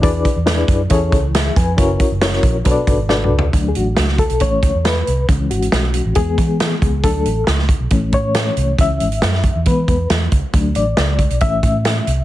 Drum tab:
HH |x-----x-----x-----x-----x-----x-----x-----x-----|x-----x-----x-----x-----x-----x-----------------|x-----x-----x-----x--x--x-----x-----x-----x-----|x-----x--x--x-----x-----x-----x-----x-----x-----|
SD |------------o-----------------------o-----------|------------o--o--------------------o-----------|------------o--o--------------------o-----------|------------o-----------------------o-----------|
T2 |------------------------------------------------|----------------------------------------o-------|------------------------------------------------|------------------------------------------------|
FT |------------------------------------------------|--------------------------------------------o---|------------------------------------------------|------------------------------------------------|
BD |o-----o-----------o-----o-----o-----------o-----|o-----o-----------o-----o-----o-----------------|o-----------------o-----o-----o-----------------|o-----------------------o-----o-----------o-----|

HH |x-----x-----x-----x-----x-----x-----x-----x-----|x-----x--x--x-----x-----x-----x-----x-----x-----|x-----x-----x-----x--x--x-----x-----x-----x-----|
SD |------------o--o--------------------o-----------|------------o--o--------------------o-----------|------------o-----------------------o-----------|
T2 |------------------------------------------------|------------------------------------------------|------------------------------------------------|
FT |------------------------------------------------|------------------------------------------------|------------------------------------------------|
BD |o-----------------o-----o-----o-----------------|o-----------------o-----o-----o-----------o-----|o-----------------o-----o-----o-----------------|